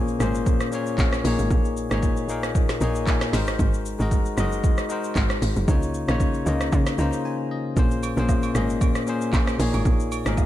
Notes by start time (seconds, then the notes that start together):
Already playing: A#1 A#2 A#3 C#4 G#4 C5 C#5
0.08 shaker
0.19 G#1 A#2 A#3 C#4 G#4 C5, cross-stick, shaker
0.35 shaker
0.46 kick, shaker
0.60 cross-stick, shaker
0.71 A#2 A#3 C#4 G#4 C#5, shaker
0.86 shaker
0.98 A#1, kick, clap, shaker
1.13 cross-stick, shaker
1.24 A#1 A#2 A#3 D#4 G#4 C#5, open hi-hat, shaker
1.39 G#1, shaker
1.51 A#1, kick, shaker
1.65 shaker
1.77 shaker
1.90 G#1 A#2 A#3 D#4 G#4 C#5, cross-stick, shaker
2.03 kick, shaker
2.17 shaker
2.28 A#1 A#2 A#3 D#4 G#4 A#4, shaker
2.43 cross-stick, shaker
2.55 kick, shaker
2.69 cross-stick, snare, shaker
2.80 A#1 A#2 A#3 D#4 G#4 C#5 D#5, shaker
2.95 shaker
3.07 G#5, kick, clap, shaker
3.21 cross-stick, snare, shaker
3.32 G#1 G#3 D#4 F#4 A#4 C5, snare, open hi-hat, shaker
3.47 cross-stick, shaker
3.59 G#1, kick, shaker
3.74 shaker
3.85 shaker
3.99 G#1 G#3 D#4 F#4 A#4 D#5, shaker
4.11 kick, shaker
4.25 shaker
4.37 F#1 G#3 D#4 F#4 A#4 D#5, cross-stick, shaker
4.52 shaker
4.64 kick, shaker
4.78 cross-stick, shaker
4.89 G#3 D#4 F#4 A#4 C5, shaker
5.04 shaker
5.16 G#1, kick, clap, shaker
5.30 cross-stick, shaker
5.42 G#1, open hi-hat, shaker
5.56 F#1, shaker
5.67 C#2 C#3 A#3 D#4 F4 C#5, kick, shaker
5.82 shaker
5.94 shaker
6.07 A#1 C#3 A#3 D#4 F4 C#5, cross-stick, shaker
6.20 kick, shaker
6.34 shaker
6.45 C#2 C#3 A#3 D#4 F4 D#5, shaker
6.61 cross-stick, shaker
6.72 C#3, kick, shaker
6.86 cross-stick, snare, shaker
6.97 C#2 C#3 A#3 D#4 F4 C5 A#5, shaker
7.13 shaker
7.25 G#5
7.51 D#5
7.76 A#1 A#2 A#3 C#4 G#4 C5, kick, shaker
7.91 shaker
8.03 high agogo, shaker
8.16 A#1 A#2 A#3 C#4 G#4 C5, shaker
8.29 kick, low woodblock, shaker
8.43 high agogo, shaker
8.54 G#1 A#2 A#3 C#4 G#4 D#5, cross-stick, shaker
8.70 shaker
8.81 kick, high agogo, shaker
8.95 cross-stick, shaker
9.06 A#2 A#3 C#4 G#4 C5, shaker
9.21 shaker
9.33 A#1, kick, clap, high agogo, shaker
9.47 cross-stick, shaker
9.58 A#1 A#2 A#3 D#4 G#4 C#5, open hi-hat, shaker
9.73 G#1, high agogo, shaker
9.85 A#1, kick, shaker
10.00 shaker
10.12 high agogo, shaker
10.25 G#1 A#2 A#3 D#4 G#4 A#4, cross-stick, shaker
10.37 kick, low woodblock, shaker